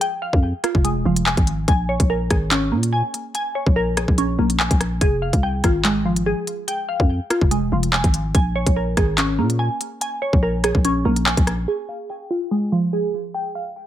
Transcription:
0.00 0.64 F3 medium
0.00 0.43 G#3 loud
0.00 0.22 F4 medium
0.00 0.85 G#4 loud
0.00 1.26 G5 loud
0.00 closed hi-hat medium
0.22 1.47 F5 medium
0.33 0.53 F2 loud
0.33 kick medium
0.64 1.68 F4 medium
0.64 cross-stick loud
0.64 closed hi-hat medium
0.75 0.97 F1 loud
0.75 kick medium
0.84 1.68 G#3 medium
0.84 closed hi-hat medium
0.96 1.05 E1 loud
1.05 1.36 F1 loud
1.05 1.68 F3 medium
1.16 closed hi-hat medium
1.26 1.67 G#5 loud
1.26 clap loud
1.37 1.67 G#1 loud
1.37 kick loud
1.37 closed hi-hat medium
1.47 closed hi-hat medium
1.68 1.99 A#1 loud
1.68 2.91 G#5 loud
1.68 kick loud
1.68 closed hi-hat medium
1.89 3.14 C#5 medium
2.00 2.29 A#1 loud
2.00 kick medium
2.00 closed hi-hat medium
2.10 3.35 A#4 medium
2.30 2.74 G#1 loud
2.30 3.55 G#4 medium
2.30 kick loud
2.30 cross-stick loud
2.30 closed hi-hat medium
2.51 3.76 C#4 loud
2.51 clap loud
2.51 closed hi-hat medium
2.72 3.02 A#2 loud
2.72 3.97 A#3 medium
2.83 closed hi-hat medium
2.93 3.34 G#5 loud
3.14 closed hi-hat medium
3.35 4.58 G#5 loud
3.35 closed hi-hat medium
3.55 4.80 C#5 medium
3.66 4.06 A#1 loud
3.66 kick medium
3.76 5.01 A#4 loud
3.97 5.00 G#4 medium
3.97 cross-stick loud
3.97 closed hi-hat medium
4.08 4.38 A#1 loud
4.08 kick medium
4.18 5.01 C#4 loud
4.18 closed hi-hat medium
4.39 4.69 A#1 loud
4.39 5.01 A#3 medium
4.50 closed hi-hat medium
4.59 5.01 G#5 loud
4.59 clap loud
4.71 5.00 A#1 loud
4.71 kick loud
4.71 closed hi-hat medium
4.80 cross-stick loud
4.80 closed hi-hat medium
5.01 5.32 F1 loud
5.01 6.25 G#4 loud
5.01 kick loud
5.01 closed hi-hat medium
5.22 6.47 F5 medium
5.33 5.63 C2 loud
5.33 kick medium
5.33 closed hi-hat medium
5.43 6.67 G5 medium
5.64 6.34 G#1 loud
5.64 6.89 F4 medium
5.64 kick loud
5.64 cross-stick loud
5.64 closed hi-hat medium
5.85 7.10 G#3 medium
5.85 clap loud
5.85 closed hi-hat medium
6.05 7.30 F3 medium
6.16 closed hi-hat medium
6.26 7.51 G#4 loud
6.47 closed hi-hat medium
6.68 7.93 G5 loud
6.68 closed hi-hat medium
6.89 8.14 F5 medium
7.00 7.20 F2 loud
7.00 kick medium
7.30 8.35 F4 medium
7.30 cross-stick loud
7.30 closed hi-hat medium
7.41 7.64 F1 loud
7.41 kick medium
7.51 8.35 G#3 medium
7.51 closed hi-hat medium
7.62 7.72 E1 loud
7.72 8.03 F1 loud
7.72 8.35 F3 medium
7.83 closed hi-hat medium
7.93 8.33 G#5 loud
7.93 clap loud
8.04 8.33 G#1 loud
8.04 kick loud
8.04 closed hi-hat medium
8.14 closed hi-hat medium
8.35 8.65 A#1 loud
8.35 9.58 G#5 loud
8.35 kick loud
8.35 closed hi-hat medium
8.56 9.81 C#5 loud
8.66 8.96 A#1 loud
8.66 kick medium
8.66 closed hi-hat medium
8.76 10.01 A#4 medium
8.97 9.40 G#1 loud
8.97 10.22 G#4 medium
8.97 kick loud
8.97 cross-stick loud
8.97 closed hi-hat medium
9.18 10.43 C#4 medium
9.18 clap loud
9.18 closed hi-hat medium
9.39 9.69 A#2 loud
9.39 10.64 A#3 medium
9.50 closed hi-hat medium
9.59 10.00 G#5 loud
9.81 closed hi-hat medium
10.01 11.25 G#5 loud
10.01 closed hi-hat medium
10.22 11.47 C#5 medium
10.33 10.73 A#1 loud
10.33 kick medium
10.43 11.68 A#4 loud
10.64 11.67 G#4 medium
10.64 cross-stick loud
10.64 closed hi-hat medium
10.75 11.04 A#1 loud
10.75 kick medium
10.85 11.68 C#4 loud
10.85 closed hi-hat medium
11.05 11.36 A#1 loud
11.05 11.68 A#3 medium
11.16 closed hi-hat medium
11.26 11.68 G#5 loud
11.26 clap loud
11.37 11.67 A#1 loud
11.37 kick loud
11.37 closed hi-hat medium
11.47 cross-stick loud
11.47 closed hi-hat medium
11.68 12.92 G#4 loud
11.89 13.14 F5 medium
12.10 13.33 G5 medium
12.31 13.56 F4 medium
12.51 13.76 G#3 medium
12.72 13.87 F3 medium
12.93 13.87 G#4 medium
13.34 13.87 G5 loud
13.55 13.87 F5 medium

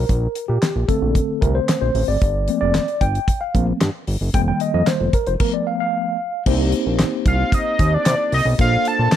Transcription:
0.00 0.45 A#4 medium
0.09 0.28 A#1 loud
0.09 kick loud
0.09 closed hi-hat medium
0.35 closed hi-hat medium
0.48 0.58 A#2 loud
0.48 0.86 G4 medium
0.62 snare loud
0.62 clap medium
0.62 closed hi-hat medium
0.76 0.85 A#1 medium
0.88 2.17 D3 medium
0.88 2.18 A3 medium
0.88 2.18 C4 medium
0.88 1.43 A4 loud
0.88 kick medium
0.88 closed hi-hat medium
1.02 1.20 A#1 medium
1.15 kick loud
1.15 closed hi-hat medium
1.41 1.60 C2 loud
1.41 1.55 A#4 medium
1.41 kick medium
1.41 closed hi-hat medium
1.55 1.80 C5 medium
1.68 snare loud
1.68 clap medium
1.68 closed hi-hat loud
1.81 1.91 A#1 medium
1.81 2.06 C5 medium
1.95 2.04 A1 loud
1.95 open hi-hat medium
2.08 2.17 G#1 medium
2.08 2.60 D5 medium
2.22 2.49 G1 loud
2.22 kick loud
2.22 closed hi-hat loud
2.48 2.83 F3 medium
2.48 2.84 A3 medium
2.48 2.84 A#3 medium
2.48 2.84 C4 medium
2.48 closed hi-hat medium
2.61 2.80 F1 loud
2.61 3.02 D5 medium
2.74 snare loud
2.74 clap medium
2.74 closed hi-hat medium
2.88 closed hi-hat soft
3.01 3.20 G1 medium
3.01 3.42 G5 loud
3.01 kick medium
3.01 closed hi-hat medium
3.15 closed hi-hat soft
3.28 kick loud
3.28 closed hi-hat medium
3.41 3.66 F5 medium
3.54 3.73 A#1 loud
3.54 3.78 F3 soft
3.54 3.78 A3 soft
3.54 3.78 A#3 soft
3.54 3.78 C4 medium
3.54 kick medium
3.54 closed hi-hat medium
3.81 3.90 G2 loud
3.81 snare loud
3.81 clap medium
3.81 closed hi-hat loud
4.07 4.17 G1 loud
4.07 open hi-hat medium
4.21 4.30 F#1 loud
4.33 4.52 F1 loud
4.33 5.09 D#3 medium
4.33 5.10 G3 medium
4.33 5.10 A#3 medium
4.33 4.40 G5 loud
4.33 kick loud
4.33 closed hi-hat medium
4.48 4.60 G5 loud
4.60 4.73 D#5 medium
4.60 closed hi-hat medium
4.74 4.83 F2 loud
4.74 4.86 D#5 loud
4.86 5.15 C5 loud
4.86 snare loud
4.86 clap medium
4.86 closed hi-hat medium
5.00 5.10 F1 medium
5.13 5.28 A#4 medium
5.13 kick loud
5.13 closed hi-hat medium
5.27 5.36 F1 medium
5.27 5.33 C5 medium
5.27 closed hi-hat soft
5.40 6.16 F3 medium
5.40 6.16 A3 medium
5.40 6.16 B3 medium
5.40 5.53 A#4 medium
5.40 kick loud
5.40 crash medium
5.54 5.66 D5 medium
5.67 5.79 F5 medium
5.80 6.43 F5 medium
6.46 6.74 C2 loud
6.46 8.55 A#3 medium
6.46 8.55 C4 medium
6.46 8.55 D#4 medium
6.46 8.55 G4 medium
6.46 8.56 C5 medium
6.46 kick loud
6.46 crash loud
6.72 closed hi-hat medium
6.86 7.05 A#1 medium
6.99 snare loud
6.99 clap medium
6.99 closed hi-hat medium
7.26 7.44 C2 medium
7.26 7.56 F5 medium
7.26 kick loud
7.26 closed hi-hat medium
7.52 7.96 D#5 loud
7.52 kick loud
7.52 closed hi-hat medium
7.79 7.98 D#2 loud
7.79 kick loud
7.79 closed hi-hat medium
7.94 8.33 D5 loud
8.05 8.15 C3 loud
8.05 snare loud
8.05 clap loud
8.05 closed hi-hat loud
8.32 8.41 C2 medium
8.32 8.46 D#5 medium
8.32 open hi-hat medium
8.46 8.55 B1 loud
8.59 8.77 A#1 loud
8.59 9.16 A#3 medium
8.59 9.16 D4 medium
8.59 9.16 F4 medium
8.59 9.16 A4 medium
8.59 9.16 C5 medium
8.59 8.89 F5 loud
8.59 kick loud
8.59 closed hi-hat loud
8.85 9.16 A5 loud
8.85 closed hi-hat medium
8.99 9.08 A#2 loud
9.11 snare loud
9.11 clap medium
9.11 closed hi-hat medium

